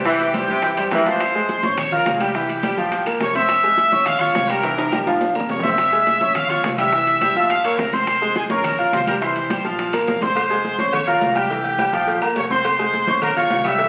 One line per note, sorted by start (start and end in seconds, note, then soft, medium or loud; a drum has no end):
0.00 0.43 C2 medium
0.00 0.91 G4 loud
0.00 0.91 G5 medium
0.05 0.28 E3 loud
0.05 0.29 E3 medium
0.05 0.29 E4 medium
0.05 0.29 E5 medium
0.05 high bongo medium
0.05 maracas medium
0.20 high bongo soft
0.20 high conga soft
0.20 high timbale medium
0.20 maracas soft
0.34 0.58 G3 medium
0.34 0.58 G4 medium
0.34 0.58 C5 medium
0.34 high bongo medium
0.34 high conga loud
0.34 high timbale medium
0.34 low timbale medium
0.34 claves medium
0.34 maracas medium
0.48 0.88 G2 loud
0.48 0.71 C3 medium
0.48 high conga soft
0.48 maracas soft
0.62 0.74 E3 medium
0.62 0.75 E4 medium
0.62 0.75 E5 medium
0.62 high bongo medium
0.62 high conga soft
0.62 high timbale medium
0.62 maracas medium
0.77 1.01 G3 medium
0.77 1.01 G4 medium
0.77 1.01 C5 medium
0.77 high bongo soft
0.77 high conga soft
0.77 high timbale loud
0.77 claves medium
0.77 maracas soft
0.91 1.57 F2 medium
0.91 1.07 E3 medium
0.91 1.05 A#4 medium
0.91 1.05 A#5 medium
0.91 high bongo medium
0.91 low bongo medium
0.91 high conga soft
0.91 low timbale medium
0.91 maracas medium
1.06 1.18 F3 medium
1.06 1.18 F4 medium
1.06 1.78 C5 loud
1.06 1.18 F5 medium
1.06 1.78 C6 medium
1.06 high bongo soft
1.06 high conga medium
1.06 high timbale medium
1.20 high bongo medium
1.20 high conga soft
1.20 high timbale medium
1.20 claves medium
1.20 maracas medium
1.35 1.58 G#3 medium
1.35 1.58 G#4 medium
1.35 1.58 G#5 medium
1.35 high conga soft
1.35 maracas soft
1.49 high bongo medium
1.49 high conga medium
1.49 high timbale medium
1.49 low timbale medium
1.49 maracas medium
1.63 2.03 A#1 loud
1.63 1.86 C#4 medium
1.63 1.87 C#5 medium
1.63 1.87 C#6 medium
1.63 high conga loud
1.63 maracas soft
1.77 1.91 C#5 loud
1.77 1.91 C#6 medium
1.77 high bongo medium
1.77 high conga soft
1.77 low conga medium
1.77 high timbale loud
1.77 claves medium
1.77 maracas medium
1.91 2.15 F4 medium
1.91 2.12 A#4 medium
1.91 2.15 F5 medium
1.91 2.12 A#5 medium
1.91 2.16 F6 medium
1.91 high conga soft
1.91 low conga medium
1.91 maracas soft
2.05 2.72 C2 medium
2.05 high bongo medium
2.05 low bongo medium
2.05 high conga medium
2.05 high timbale medium
2.05 low timbale medium
2.05 maracas medium
2.14 2.20 G#4 medium
2.20 2.32 G3 medium
2.20 3.06 G4 loud
2.20 2.32 G4 medium
2.20 2.32 G5 medium
2.20 3.06 G5 medium
2.20 high conga medium
2.20 high timbale medium
2.20 claves medium
2.20 maracas soft
2.35 2.58 E3 medium
2.35 2.58 E4 medium
2.35 2.59 E5 medium
2.35 high bongo medium
2.35 high conga soft
2.35 maracas medium
2.49 high bongo soft
2.49 high conga soft
2.49 high timbale medium
2.49 maracas soft
2.63 2.75 G3 medium
2.63 2.75 G4 medium
2.63 2.75 G5 medium
2.63 high bongo medium
2.63 high conga loud
2.63 high timbale medium
2.63 low timbale medium
2.63 claves medium
2.63 maracas medium
2.77 3.04 A#1 loud
2.77 3.01 F3 medium
2.77 3.01 F4 medium
2.77 3.01 F5 medium
2.77 high conga soft
2.77 maracas soft
2.91 high bongo medium
2.91 high conga soft
2.91 high timbale medium
2.91 maracas medium
3.06 3.19 G1 medium
3.06 3.30 A#3 medium
3.06 3.30 A#4 medium
3.06 3.30 A#5 medium
3.06 high bongo soft
3.06 high conga soft
3.06 high timbale loud
3.06 claves medium
3.06 maracas soft
3.20 3.86 F1 medium
3.20 3.34 C#5 medium
3.20 3.34 C#6 medium
3.20 high bongo medium
3.20 low bongo medium
3.20 high conga soft
3.20 low timbale medium
3.20 maracas medium
3.35 3.58 C4 medium
3.35 3.59 C5 medium
3.35 4.02 E5 loud
3.35 3.59 C6 medium
3.35 4.03 E6 loud
3.35 high bongo soft
3.35 high conga medium
3.35 high timbale medium
3.35 maracas soft
3.49 high bongo medium
3.49 high conga soft
3.49 high timbale medium
3.49 claves medium
3.49 maracas medium
3.63 3.87 G#3 medium
3.63 3.87 G#4 medium
3.63 3.87 G#5 medium
3.63 high conga soft
3.63 maracas soft
3.77 high bongo medium
3.77 high conga medium
3.77 high timbale medium
3.77 low timbale soft
3.77 maracas medium
3.92 4.32 A#1 loud
3.92 4.16 C#4 medium
3.92 4.16 C#5 medium
3.92 4.16 C#6 medium
3.92 high conga loud
3.92 maracas soft
4.06 4.21 F5 loud
4.06 high bongo medium
4.06 high conga soft
4.06 low conga medium
4.06 high timbale medium
4.06 claves medium
4.06 maracas medium
4.20 4.44 F4 medium
4.20 4.49 C#5 loud
4.20 4.44 F5 medium
4.20 4.49 C#6 medium
4.20 4.44 F6 medium
4.20 high conga soft
4.20 low conga medium
4.20 maracas soft
4.34 5.01 C2 medium
4.34 high bongo medium
4.34 low bongo medium
4.34 high conga medium
4.34 high timbale medium
4.34 low timbale medium
4.34 maracas medium
4.49 4.61 G3 medium
4.49 4.61 G4 medium
4.49 5.08 A#4 loud
4.49 4.61 G5 medium
4.49 5.08 A#5 medium
4.49 high conga medium
4.49 high timbale medium
4.49 claves medium
4.49 maracas soft
4.63 4.87 E3 medium
4.63 4.87 E4 medium
4.63 4.87 E5 medium
4.63 high bongo medium
4.63 high conga soft
4.63 high timbale medium
4.63 maracas medium
4.78 high bongo soft
4.78 high conga soft
4.78 high timbale loud
4.78 maracas soft
4.92 5.04 G3 medium
4.92 5.04 G4 medium
4.92 5.04 G5 medium
4.92 high bongo medium
4.92 high conga loud
4.92 high timbale medium
4.92 claves medium
4.92 maracas medium
5.06 5.33 A#1 medium
5.06 5.30 F3 medium
5.06 5.30 F4 medium
5.06 5.30 F5 medium
5.06 high conga soft
5.06 high timbale loud
5.06 maracas soft
5.21 high bongo medium
5.21 high conga soft
5.21 low timbale loud
5.21 maracas medium
5.35 5.48 G1 medium
5.35 5.58 A#3 medium
5.35 5.59 A#4 medium
5.35 5.59 A#5 medium
5.35 high conga soft
5.35 low timbale medium
5.35 claves medium
5.35 maracas soft
5.40 low bongo medium
5.49 6.15 F1 medium
5.49 5.63 C#5 medium
5.49 5.63 C#6 medium
5.49 low bongo medium
5.49 high conga soft
5.49 low timbale medium
5.49 maracas medium
5.59 6.31 E5 loud
5.59 low bongo medium
5.63 5.87 C4 medium
5.63 5.87 C5 medium
5.63 5.87 C6 medium
5.63 6.31 E6 medium
5.63 high conga medium
5.63 low timbale loud
5.63 maracas soft
5.69 low bongo medium
5.78 high bongo medium
5.78 high conga soft
5.78 high timbale medium
5.78 claves medium
5.78 maracas medium
5.92 6.16 G#3 medium
5.92 6.16 G#4 medium
5.92 6.16 G#5 medium
5.92 high conga soft
5.92 maracas soft
6.06 high bongo medium
6.06 high conga medium
6.06 high timbale medium
6.06 low timbale medium
6.06 maracas medium
6.21 6.61 A#1 medium
6.21 6.44 C#4 medium
6.21 6.45 C#5 medium
6.21 6.45 C#6 medium
6.21 high conga loud
6.21 maracas soft
6.35 6.50 F5 loud
6.35 high bongo medium
6.35 high conga soft
6.35 low conga medium
6.35 high timbale medium
6.35 claves medium
6.35 maracas medium
6.49 6.73 F4 medium
6.49 6.62 C#5 loud
6.49 6.73 F5 medium
6.49 6.63 C#6 medium
6.49 6.74 F6 medium
6.49 high conga soft
6.49 low conga medium
6.49 maracas soft
6.63 7.30 C2 medium
6.63 6.70 C#5 medium
6.63 6.70 C#6 medium
6.63 high bongo medium
6.63 low bongo medium
6.63 high conga medium
6.63 high timbale medium
6.63 low timbale medium
6.63 maracas medium
6.78 6.90 G3 medium
6.78 6.90 G4 medium
6.78 7.46 E5 loud
6.78 6.90 G5 medium
6.78 7.46 E6 loud
6.78 high conga medium
6.78 high timbale medium
6.78 claves medium
6.78 maracas soft
6.92 7.16 E3 medium
6.92 7.16 E4 medium
6.92 7.16 E5 medium
6.92 high bongo medium
6.92 high conga soft
6.92 maracas medium
7.07 high bongo soft
7.07 high conga soft
7.07 high timbale medium
7.07 maracas soft
7.21 7.33 G3 medium
7.21 7.33 G4 medium
7.21 7.33 G5 medium
7.21 high bongo medium
7.21 high conga loud
7.21 high timbale medium
7.21 low timbale medium
7.21 claves medium
7.21 maracas medium
7.35 7.75 A#1 loud
7.35 7.59 F3 medium
7.35 7.59 F4 loud
7.35 7.60 F5 medium
7.35 high conga soft
7.35 maracas soft
7.50 7.63 F5 loud
7.50 high bongo medium
7.50 high conga soft
7.50 high timbale medium
7.50 maracas medium
7.64 7.88 A#3 medium
7.64 7.88 A#4 medium
7.64 7.78 C#5 medium
7.64 7.88 A#5 medium
7.64 7.78 C#6 medium
7.64 high bongo soft
7.64 high conga soft
7.64 high timbale loud
7.64 claves medium
7.64 maracas soft
7.78 8.44 F1 medium
7.78 7.93 A#4 medium
7.78 7.93 A#5 medium
7.78 high bongo medium
7.78 low bongo medium
7.78 high conga soft
7.78 low timbale medium
7.78 maracas medium
7.92 8.16 C4 medium
7.92 8.36 C5 loud
7.92 8.17 C5 medium
7.92 8.36 C6 medium
7.92 8.17 C6 medium
7.92 high bongo soft
7.92 high conga medium
7.92 high timbale medium
7.92 maracas soft
8.07 high bongo medium
8.07 high timbale medium
8.07 claves medium
8.07 maracas medium
8.21 8.45 G#3 medium
8.21 8.45 G#4 medium
8.21 8.45 G#5 medium
8.21 high conga soft
8.21 maracas soft
8.36 8.43 G#4 medium
8.36 8.43 G#5 medium
8.36 high bongo medium
8.36 high conga medium
8.36 high timbale medium
8.36 low timbale soft
8.36 maracas medium
8.49 8.90 A#1 loud
8.49 8.73 C#4 medium
8.49 8.90 A#4 loud
8.49 8.74 C#5 medium
8.49 8.90 A#5 medium
8.49 8.74 C#6 medium
8.49 high conga loud
8.49 maracas soft
8.64 high bongo medium
8.64 high conga soft
8.64 low conga loud
8.64 high timbale medium
8.64 claves medium
8.64 maracas medium
8.79 9.02 F4 medium
8.79 9.02 F5 medium
8.79 9.02 F6 medium
8.79 high conga soft
8.79 low conga medium
8.79 maracas soft
8.92 9.59 C2 medium
8.92 9.00 C5 medium
8.92 9.00 C6 medium
8.92 high bongo medium
8.92 low bongo medium
8.92 high conga medium
8.92 high timbale medium
8.92 low timbale medium
8.92 maracas medium
9.07 9.19 G3 medium
9.07 9.19 G4 medium
9.07 9.14 A#4 loud
9.07 9.19 G5 medium
9.07 9.14 A#5 medium
9.07 high conga medium
9.07 high timbale medium
9.07 claves medium
9.07 maracas soft
9.21 9.45 E3 medium
9.21 9.45 E4 medium
9.21 9.62 C5 loud
9.21 9.45 E5 medium
9.21 9.62 C6 medium
9.21 high bongo medium
9.21 high conga soft
9.21 maracas medium
9.36 high bongo soft
9.36 high conga soft
9.36 high timbale medium
9.36 maracas soft
9.50 9.62 G3 medium
9.50 9.62 G4 medium
9.50 9.62 G5 medium
9.50 high bongo medium
9.50 high conga medium
9.50 high timbale medium
9.50 low timbale medium
9.50 claves medium
9.50 maracas medium
9.64 10.04 A#1 loud
9.64 9.88 F3 medium
9.64 9.88 F4 medium
9.64 10.18 F5 medium
9.64 9.89 F5 medium
9.64 high conga soft
9.64 maracas soft
9.79 high bongo medium
9.79 high conga soft
9.79 high timbale medium
9.79 maracas medium
9.93 10.17 A#3 medium
9.93 10.17 A#4 medium
9.93 10.17 A#5 medium
9.93 high bongo medium
9.93 high conga soft
9.93 high timbale loud
9.93 claves medium
9.93 maracas soft
10.07 10.74 F1 medium
10.07 10.14 A#4 medium
10.07 10.14 A#5 medium
10.07 high bongo loud
10.07 low timbale medium
10.07 maracas medium
10.21 10.33 C4 medium
10.21 10.89 C5 loud
10.21 10.34 C5 medium
10.21 10.89 C6 medium
10.21 10.34 C6 medium
10.21 low bongo medium
10.21 high conga medium
10.21 high timbale medium
10.21 maracas soft
10.36 cowbell loud
10.36 high conga soft
10.36 low agogo loud
10.36 claves medium
10.36 maracas medium
10.50 10.74 G#3 medium
10.50 10.74 G#4 medium
10.50 10.74 G#5 medium
10.50 high conga soft
10.50 low agogo medium
10.50 maracas soft
10.64 cowbell medium
10.64 high conga medium
10.64 low timbale medium
10.64 maracas medium
10.78 11.19 A#1 medium
10.78 11.02 C#4 medium
10.78 11.03 C#5 medium
10.78 11.03 C#6 medium
10.78 cowbell medium
10.78 high conga loud
10.78 low agogo medium
10.78 maracas soft
10.93 11.08 C#5 loud
10.93 11.08 C#6 medium
10.93 cowbell loud
10.93 high conga soft
10.93 low conga medium
10.93 low agogo loud
10.93 claves medium
10.93 maracas medium
11.07 11.31 F4 medium
11.07 11.34 A#4 medium
11.07 11.31 F5 medium
11.07 11.34 A#5 medium
11.07 11.31 F6 medium
11.07 high conga soft
11.07 maracas soft
11.21 11.88 C2 medium
11.21 cowbell medium
11.21 high conga loud
11.21 low timbale medium
11.21 low agogo medium
11.21 maracas medium
11.35 11.48 G3 medium
11.35 12.21 G4 loud
11.35 11.48 G4 medium
11.35 12.22 G5 medium
11.35 11.48 G5 medium
11.35 high conga medium
11.35 low agogo medium
11.35 claves medium
11.35 maracas soft
11.50 11.74 E3 medium
11.50 11.74 E4 medium
11.50 11.74 E5 medium
11.50 cowbell loud
11.50 maracas medium
11.64 cowbell medium
11.64 high conga soft
11.64 low agogo loud
11.64 maracas soft
11.78 11.91 G3 medium
11.78 11.91 G4 medium
11.78 11.91 G5 medium
11.78 cowbell medium
11.78 high conga medium
11.78 low timbale medium
11.78 low agogo loud
11.78 claves medium
11.78 maracas medium
11.93 12.20 A#1 loud
11.93 12.17 F3 loud
11.93 12.17 F4 medium
11.93 12.17 F5 medium
11.93 cowbell medium
11.93 high conga soft
11.93 maracas soft
12.07 cowbell loud
12.07 high conga soft
12.07 low agogo medium
12.07 maracas medium
12.21 12.35 G1 medium
12.21 12.45 A#3 medium
12.21 12.45 A#4 medium
12.21 12.46 A#5 medium
12.21 high conga soft
12.21 low agogo loud
12.21 claves medium
12.21 maracas soft
12.36 13.02 F1 medium
12.36 12.43 C#5 medium
12.36 12.43 C#6 medium
12.36 cowbell medium
12.36 high conga soft
12.36 low timbale medium
12.36 maracas medium
12.50 12.74 C4 medium
12.50 13.18 C5 loud
12.50 12.74 C5 medium
12.50 12.74 C6 medium
12.50 13.18 C6 loud
12.50 high conga medium
12.50 low agogo medium
12.50 maracas soft
12.64 cowbell loud
12.64 high conga soft
12.64 low agogo loud
12.64 claves medium
12.64 maracas medium
12.79 13.02 G#3 medium
12.79 13.03 G#4 medium
12.79 13.03 G#5 medium
12.79 high conga soft
12.79 low agogo medium
12.79 maracas soft
12.93 cowbell medium
12.93 high conga medium
12.93 low timbale medium
12.93 maracas medium
13.07 13.47 A#1 loud
13.07 13.31 C#4 medium
13.07 13.31 C#5 medium
13.07 13.32 C#6 medium
13.07 cowbell medium
13.07 high conga loud
13.07 low agogo medium
13.07 maracas soft
13.21 13.35 A#4 loud
13.21 13.35 A#5 medium
13.21 cowbell loud
13.21 high conga soft
13.21 low conga medium
13.21 low agogo loud
13.21 claves medium
13.21 maracas medium
13.36 13.60 F4 medium
13.36 13.63 C#5 loud
13.36 13.60 F5 medium
13.36 13.63 C#6 medium
13.36 13.60 F6 medium
13.36 high conga soft
13.36 low conga medium
13.36 maracas soft
13.50 13.89 C2 medium
13.50 cowbell medium
13.50 high conga loud
13.50 low timbale medium
13.50 low agogo medium
13.50 maracas medium
13.64 13.76 G3 medium
13.64 13.77 G4 medium
13.64 13.89 E5 loud
13.64 13.77 G5 medium
13.64 13.89 E6 medium
13.64 high conga medium
13.64 low agogo loud
13.64 claves medium
13.64 maracas soft
13.78 13.89 E3 medium
13.78 13.89 E4 medium
13.78 13.89 E5 medium
13.78 cowbell loud
13.78 high conga soft
13.78 maracas medium